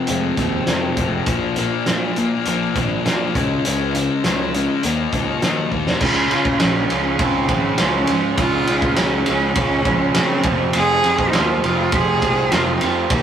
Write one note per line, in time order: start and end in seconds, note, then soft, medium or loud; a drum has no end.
0.00 0.37 F2 medium
0.00 0.97 C3 medium
0.00 0.37 C4 medium
0.07 0.29 F1 medium
0.07 0.38 F2 medium
0.07 0.38 C3 medium
0.07 0.40 F3 loud
0.07 0.67 G#3 medium
0.07 closed hi-hat medium
0.37 0.58 D#2 medium
0.37 0.67 F2 medium
0.37 0.68 C3 medium
0.37 0.69 F3 medium
0.37 1.27 C4 medium
0.37 kick medium
0.37 closed hi-hat medium
0.67 0.97 F2 medium
0.67 0.89 F2 medium
0.67 0.98 C3 medium
0.67 0.99 F3 medium
0.67 1.27 G#3 medium
0.67 snare medium
0.67 closed hi-hat medium
0.97 1.18 F1 medium
0.97 1.26 F2 medium
0.97 1.27 C3 medium
0.97 1.26 C3 medium
0.97 1.28 F3 medium
0.97 kick medium
0.97 closed hi-hat medium
1.26 1.68 A#1 medium
1.26 2.16 A#2 medium
1.26 1.56 A#2 medium
1.26 1.57 F3 medium
1.26 1.58 A#3 medium
1.26 kick loud
1.26 closed hi-hat medium
1.56 1.86 A#2 medium
1.56 1.87 F3 medium
1.56 1.87 A#3 medium
1.56 2.75 D4 medium
1.56 closed hi-hat medium
1.86 2.17 A#2 medium
1.86 2.28 A#2 medium
1.86 2.17 F3 medium
1.86 2.17 A#3 medium
1.86 snare loud
1.86 closed hi-hat medium
2.16 3.35 A#2 medium
2.16 2.46 A#2 medium
2.16 2.46 F3 medium
2.16 2.47 A#3 medium
2.16 closed hi-hat medium
2.45 2.67 A#1 medium
2.45 2.75 A#2 medium
2.45 2.76 F3 medium
2.45 3.04 A#3 medium
2.45 2.77 A#3 loud
2.45 closed hi-hat medium
2.75 2.96 G#1 medium
2.75 3.05 A#2 medium
2.75 3.06 F3 medium
2.75 3.06 A#3 medium
2.75 3.36 D4 medium
2.75 kick medium
2.75 closed hi-hat medium
3.05 3.26 A#2 medium
3.05 3.34 A#2 medium
3.05 3.34 F3 medium
3.05 3.35 A#3 medium
3.05 3.34 A#3 medium
3.05 snare loud
3.05 closed hi-hat medium
3.35 3.56 C#2 medium
3.35 3.64 C#3 medium
3.35 3.65 C#3 medium
3.35 3.65 G#3 medium
3.35 3.66 C#4 loud
3.35 kick loud
3.35 closed hi-hat medium
3.65 4.07 C#2 medium
3.65 4.53 C#3 medium
3.65 3.94 C#3 medium
3.65 3.95 G#3 medium
3.65 3.95 C#4 medium
3.65 closed hi-hat medium
3.94 4.24 C#3 medium
3.94 4.25 G#3 medium
3.94 4.84 C#4 medium
3.94 4.25 C#4 medium
3.94 closed hi-hat medium
4.24 4.66 C#2 medium
4.24 4.53 C#3 medium
4.24 4.84 G#3 medium
4.24 4.54 G#3 medium
4.24 4.54 C#4 medium
4.24 snare loud
4.24 closed hi-hat medium
4.54 4.82 C#3 medium
4.54 4.82 G#3 medium
4.54 4.82 C#4 medium
4.54 closed hi-hat medium
4.83 5.04 D#2 medium
4.83 5.71 D#3 medium
4.83 5.12 D#3 medium
4.83 5.13 A#3 medium
4.83 5.14 D#4 medium
4.83 closed hi-hat medium
5.12 5.33 C#2 medium
5.12 5.42 D#3 medium
5.12 5.42 A#3 medium
5.12 6.02 D#4 medium
5.12 5.43 D#4 medium
5.12 kick medium
5.12 closed hi-hat medium
5.42 5.63 D#3 medium
5.42 5.71 D#3 medium
5.42 6.02 A#3 medium
5.42 5.71 A#3 medium
5.42 5.72 D#4 medium
5.42 snare loud
5.42 closed hi-hat medium
5.72 5.93 D#2 medium
5.72 6.00 D#3 medium
5.72 6.01 D#3 medium
5.72 6.01 A#3 medium
5.72 6.01 D#4 medium
5.72 kick medium
5.87 snare medium
6.00 6.25 C#2 medium
6.00 6.30 C#3 medium
6.00 6.31 C#3 loud
6.00 6.32 G#3 medium
6.00 6.32 C#4 loud
6.00 6.62 F4 medium
6.00 kick loud
6.00 crash loud
6.31 7.77 C#3 medium
6.31 6.61 C#3 medium
6.31 6.55 C#3 medium
6.31 6.62 G#3 medium
6.31 6.62 C#4 medium
6.31 ride medium
6.45 kick medium
6.60 6.85 A#1 medium
6.60 6.90 C#3 medium
6.60 7.49 F3 medium
6.60 6.91 G#3 loud
6.60 6.89 C#4 medium
6.60 6.91 C#4 loud
6.60 snare loud
6.60 ride medium
6.89 7.14 C#2 medium
6.89 7.20 C#3 medium
6.89 9.27 G#3 medium
6.89 7.21 G#3 medium
6.89 7.22 C#4 medium
6.89 7.21 C#4 medium
6.89 ride medium
7.19 7.43 C#2 medium
7.19 7.49 C#3 medium
7.19 7.50 G#3 medium
7.19 7.80 C4 medium
7.19 7.50 C#4 medium
7.19 kick loud
7.19 ride medium
7.49 7.73 G#1 medium
7.49 7.78 C#3 medium
7.49 8.08 F3 medium
7.49 7.80 G#3 medium
7.49 7.80 C#4 loud
7.49 kick medium
7.49 ride medium
7.78 8.03 C#2 medium
7.78 8.37 C#3 medium
7.78 8.08 C#3 medium
7.78 8.09 G#3 medium
7.78 8.24 C#4 medium
7.78 8.09 C#4 medium
7.78 snare loud
7.78 ride medium
8.07 8.33 G#2 medium
8.07 8.38 C#3 medium
8.07 8.97 F3 medium
8.07 8.40 G#3 medium
8.07 8.39 C#4 medium
8.07 ride medium
8.38 8.62 C#2 medium
8.38 8.67 C#3 medium
8.38 8.69 G#3 medium
8.38 8.69 C#4 loud
8.38 8.99 F4 loud
8.38 kick loud
8.38 ride medium
8.67 8.92 C#2 medium
8.67 10.16 C#3 medium
8.67 8.97 C#3 medium
8.67 8.99 G#3 medium
8.67 8.99 C#4 loud
8.67 ride medium
8.82 kick medium
8.96 9.22 C#2 medium
8.96 9.27 C#3 medium
8.96 9.86 F3 medium
8.96 9.28 G#3 loud
8.96 9.27 C#4 medium
8.96 9.28 C#4 loud
8.96 snare loud
8.96 ride medium
9.26 9.51 C#2 medium
9.26 9.56 C#3 medium
9.26 10.45 G#3 medium
9.26 9.56 G#3 medium
9.26 9.55 C#4 medium
9.26 9.57 C#4 medium
9.26 ride medium
9.55 9.80 C#2 medium
9.55 9.85 C#3 medium
9.55 9.86 G#3 medium
9.55 10.45 C#4 medium
9.55 10.12 C#4 loud
9.55 9.86 C#4 medium
9.55 kick loud
9.55 ride medium
9.85 10.09 C#2 medium
9.85 10.15 C#3 medium
9.85 10.46 F3 medium
9.85 10.15 G#3 medium
9.85 10.16 C#4 loud
9.85 kick medium
9.85 ride medium
10.14 10.44 C#3 medium
10.14 10.40 C#3 medium
10.14 10.46 C#3 medium
10.14 10.44 G#3 medium
10.14 10.58 C4 loud
10.14 10.44 C#4 loud
10.14 snare loud
10.14 ride medium
10.43 10.69 F1 medium
10.43 10.75 F2 loud
10.43 10.75 F2 medium
10.43 10.75 C3 loud
10.43 10.76 F3 loud
10.43 kick loud
10.43 ride medium
10.73 10.98 F1 medium
10.73 11.04 F2 loud
10.73 11.04 C3 loud
10.73 11.05 F3 loud
10.73 11.31 G#4 loud
10.73 ride medium
11.04 11.28 F2 medium
11.04 11.33 F2 medium
11.04 11.34 C3 medium
11.04 11.34 F3 loud
11.04 ride medium
11.19 kick medium
11.29 11.38 D#4 medium
11.33 11.58 D#2 medium
11.33 11.63 F2 medium
11.33 11.64 C3 loud
11.33 11.64 F3 loud
11.33 11.64 F4 loud
11.33 snare loud
11.33 ride medium
11.63 11.87 F1 medium
11.63 11.93 F2 medium
11.63 11.93 C3 medium
11.63 11.93 F3 medium
11.63 11.97 F4 loud
11.63 ride medium
11.92 12.16 F1 medium
11.92 12.22 F2 medium
11.92 12.23 C3 medium
11.92 12.24 F3 medium
11.92 12.55 G#4 loud
11.92 kick loud
11.92 ride medium
12.22 12.46 C2 medium
12.22 12.51 F2 medium
12.22 12.52 C3 loud
12.22 12.53 F3 loud
12.22 kick medium
12.22 ride medium
12.52 12.75 F1 loud
12.52 12.80 F2 medium
12.52 12.81 C3 loud
12.52 12.81 F3 loud
12.52 12.75 F4 loud
12.52 snare loud
12.52 ride medium
12.75 12.83 D#4 medium
12.81 13.09 F2 medium
12.81 13.05 F2 medium
12.81 13.10 C3 medium
12.81 13.10 F3 medium
12.81 13.10 F4 medium
12.81 ride medium
13.10 13.22 D#2 medium
13.10 13.22 D#3 medium
13.10 13.22 A#3 loud
13.10 13.22 D#4 loud
13.10 13.22 G4 loud
13.10 kick loud
13.10 ride loud